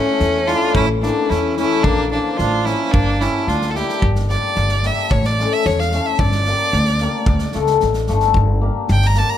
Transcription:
Already playing: E3 A3 C#4 E4
0.20 E2, snare
0.46 E3 A3 C#4 D4 E4 F4, snare
0.73 A1 C#4 E4, kick
1.01 E3 A3 A#3 C#4 D4 E4, snare
1.28 E2 C#4 E4, snare
1.56 E3 A3 C#4 E4, snare
1.83 A#1 A#3 D4, kick
2.12 F3 A#3 D4 F4
2.37 A1 D4 F4, snare
2.65 F3 A#3 C#4 D4 E4 F4, snare
2.91 G1 A#3 D4, kick
3.20 G3 A#3 C#4 D4 E4 G4, snare
3.47 D2 D4 F4, snare
3.62 snare
3.69 F4 A4
3.75 G3 A#3 D4 E4 G4, snare
3.89 snare
4.02 G1, kick
4.15 snare
4.29 G3 A#3 D4 G4 D5, snare
4.55 G1, snare
4.68 snare
4.83 G3 A#3 D4 G4 E5, snare
5.11 A1 C#5, kick
5.25 D5, snare
5.38 A3 C#4 E4 A4, snare
5.53 E5
5.65 E2 C#5, snare
5.80 F5, snare
5.91 A3 C#4 E4 A4, snare
6.06 E5
6.19 G1 D5, kick
6.32 snare
6.45 A#3 D4 G4 A#4, snare
6.73 D2, snare
6.85 snare
6.98 A#3 D4, snare
7.02 G4 A#4
7.26 D2, kick
7.39 snare
7.52 C#2 A3 D4 F4, snare
7.56 A4
7.66 snare
7.80 A1, snare
7.94 snare
8.07 G1 A3 D4 F4 A4, snare
8.20 snare
8.34 G1, kick
8.61 A#3 D4 G4 A#4
8.88 G1 G5, snare
9.02 snare
9.07 A#5
9.14 A#3 D4 G4 A#4, snare
9.18 A5
9.29 A#5

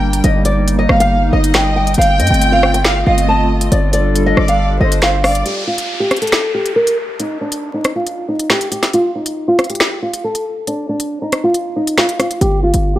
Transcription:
Already playing: G1 G3 A#3 D4 G5
0.13 closed hi-hat
0.24 G1 D#4 D#5, closed hi-hat
0.45 D5, closed hi-hat
0.68 closed hi-hat
0.79 D#5
0.89 G1 F5, cross-stick
1.00 F5, closed hi-hat
1.33 G1 D#5
1.44 closed hi-hat
1.54 G5, finger snap, snare, closed hi-hat
1.76 G5
1.87 closed hi-hat
1.94 G1 A3 C4 F4 F5 G5, closed hi-hat
2.02 closed hi-hat
2.20 G2 D#5, closed hi-hat
2.27 G1, closed hi-hat
2.34 closed hi-hat
2.42 closed hi-hat
2.52 F5
2.63 cross-stick
2.74 G5, closed hi-hat
2.84 F5, finger snap, snare
3.06 G1 D#5 F5
3.18 closed hi-hat
3.29 A5
3.61 closed hi-hat
3.72 G1 G3 D4 A4 D5, closed hi-hat
3.93 D5, closed hi-hat
4.16 closed hi-hat
4.26 D#5
4.37 G1 D5, cross-stick
4.48 F5, closed hi-hat
4.80 G1 C5 D#5
4.92 closed hi-hat
5.02 F5, finger snap, snare, closed hi-hat
5.24 D5 F5, cross-stick, open hi-hat
5.35 closed hi-hat
5.46 G4, closed hi-hat, downlifter
5.67 F4
5.78 closed hi-hat
6.00 G4
6.11 cross-stick, closed hi-hat
6.16 closed hi-hat
6.22 A4, closed hi-hat
6.27 closed hi-hat
6.32 finger snap, snare, closed hi-hat
6.54 G4
6.66 closed hi-hat
6.76 A#4
6.87 closed hi-hat
7.20 D#4, closed hi-hat
7.41 D4
7.52 closed hi-hat
7.74 D#4
7.84 cross-stick, closed hi-hat
7.96 F4
8.06 closed hi-hat
8.28 D#4
8.39 closed hi-hat
8.50 G4, finger snap, snare
8.61 closed hi-hat
8.72 G4, closed hi-hat
8.83 snare, closed hi-hat
8.93 F4, closed hi-hat
9.15 D#4
9.26 closed hi-hat
9.48 F4
9.59 cross-stick, closed hi-hat
9.64 closed hi-hat
9.70 G4, closed hi-hat
9.75 closed hi-hat
9.80 finger snap, snare, closed hi-hat
10.02 F4
10.13 closed hi-hat
10.24 A4
10.35 closed hi-hat
10.67 D4, closed hi-hat
10.89 D4
11.00 closed hi-hat
11.22 D#4
11.32 cross-stick, closed hi-hat
11.44 F4
11.54 closed hi-hat
11.76 D#4
11.87 closed hi-hat
11.98 F4, finger snap, snare
12.09 closed hi-hat
12.19 F4, cross-stick, closed hi-hat
12.31 closed hi-hat
12.41 G1 G4, closed hi-hat
12.63 F4
12.74 G1, closed hi-hat
12.96 G4

